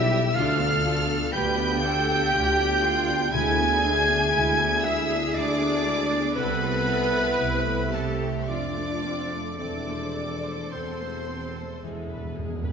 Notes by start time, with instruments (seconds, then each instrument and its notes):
Already playing: double bass section B1, tuba B1, harp B2 G3 F4 G4 G5, viola section G3 G4, french horn section E4, cello section G4, oboe E5, violin section E5 E6, flute E5, clarinet E5
0.10 harp D5
0.35 double bass section D2, tuba D2, harp D3, viola section D4 F4, french horn section F4, cello section A4, oboe F5, flute F5, violin section F5 F6, clarinet F5
0.60 viola section B3 D4, harp B3
0.83 viola section D4 F4, harp F4
1.08 viola section B3 D4, harp D5
1.31 double bass section D2, tuba D2, viola section D4 F4, french horn section G4, cello section B4, harp B4, clarinet G5, flute G5, violin section G5 G6, oboe G5
1.57 viola section B3 D4, harp F5
1.83 viola section D4 F4, cello section A4, harp D6
2.08 viola section B3 D4, harp F5
2.34 double bass section D2, tuba D2, viola section D4 F4, cello section G4, harp D5
2.59 viola section B3 D4, harp F4
2.83 harp B3, viola section D4 F4, cello section F4
3.08 viola section B3 D4, harp D4
3.32 double bass section D2, tuba D2, harp D3, viola section G#3 E4, cello section E4, french horn section G#4, flute G#5, clarinet G#5, violin section G#5 G#6, oboe G#5
3.58 viola section B3 D4, harp B3
3.82 viola section G#3 E4, cello section D4, harp E4
4.06 viola section B3 D4, harp E5
4.32 double bass section D2, tuba D2, viola section G#3 E4, cello section E4, harp B4
4.58 viola section B3 D4, harp E5
4.82 viola section G#3 E4, french horn section E4, cello section G#4, violin section E5 E6, clarinet E5, flute E5, oboe E5, harp E6
5.08 viola section B3 D4, harp E5
5.33 tuba D2, double bass section D2, viola section G#3 E4, french horn section D4, harp E4, clarinet D5, flute D5, violin section D5 D6
5.38 oboe D5
5.59 viola section B3 D4, harp B3
5.85 harp G#3, viola section G#3 E4
6.10 viola section B3 D4, harp B3
6.33 tuba C2, double bass section C2, harp C3, french horn section B3, viola section C4 E4, cello section A4, violin section B4 B5, clarinet B4, flute B4
6.38 oboe B4
6.61 viola section A3 C4, harp A3
6.86 viola section C4 E4, harp E4
7.12 viola section A3 C4, harp E5
7.36 tuba C2, double bass section C2, viola section C4 E4, cello section E4, harp A4
7.66 viola section A3 C4, harp E5
7.91 french horn section A3, viola section C4 E4, cello section G4, violin section A4 A5, clarinet A4, flute A4
7.95 oboe A4
8.21 viola section A3 C4, harp E5
8.47 tuba F1, double bass section F2, harp F3, viola section C4 F4, french horn section D4, cello section F4, flute D5, clarinet D5, violin section D5 D6, oboe D5
8.76 viola section A3 A4, harp F4
9.04 viola section C4 F4, harp C5
9.31 viola section A3 A4, harp A4
9.58 tuba E1, double bass section E2, harp E3, viola section C4 A4, french horn section D4, cello section A4, clarinet D5, oboe D5, violin section D5 D6, flute D5
9.88 viola section A3 C5, harp A3
10.14 viola section C4 A4, harp A4
10.43 viola section A3 C5, harp C5
10.71 tuba E1, double bass section E2, viola section C4 A4, french horn section C4, harp A4, oboe C5, clarinet C5, flute C5, violin section C5 C6
10.99 viola section A3 C5, harp A5
11.26 viola section C4 A4, harp C6
11.55 viola section A3 C5, harp A5
11.82 tuba E1, double bass section E2, timpani E2, harp E3, viola section G#3 G#4
11.91 timpani E2
12.00 timpani E2
12.07 timpani E2, viola section B3 B4
12.12 timpani E2, harp B3
12.24 timpani E2
12.31 timpani E2
12.37 timpani E2, viola section G#3 G#4, harp G#4
12.47 timpani E2
12.56 timpani E2
12.63 timpani E2, viola section B3 B4
12.68 harp B4